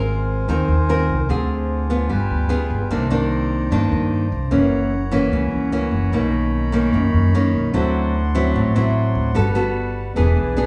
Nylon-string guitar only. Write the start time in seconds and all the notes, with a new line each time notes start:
Already playing: G#3 C4 F4 A#4
0.49 D#3 C4 F4 A#4
0.89 C4 F4 A#4
1.29 D3 C4 F4 G#4
1.90 B3 F4
2.09 G3
2.49 B3 F4 G#4
2.91 C3 D#3 A#3 D4
3.10 D#3 A#3 D4
3.72 G2 D#3 A#3 D4
4.51 F#2 E3 A#3 C#4
5.12 E3 A#3 C#4
5.33 C#3
5.72 E3 A#3 C#4
6.13 B2 D#3 A#3 C#4
6.72 D#3 A#3 C#4
6.94 F#2
7.34 D#3 A#3 C#4
7.74 D3 F#3 C4 E4
8.35 F#3 C4 E4
8.56 A2
8.76 F#3 C4 E4
9.34 G3 B3 F#4 A4
9.55 B3 F#4 A4
10.16 E3 B3 D4 G#4
10.56 B3 D4 G#4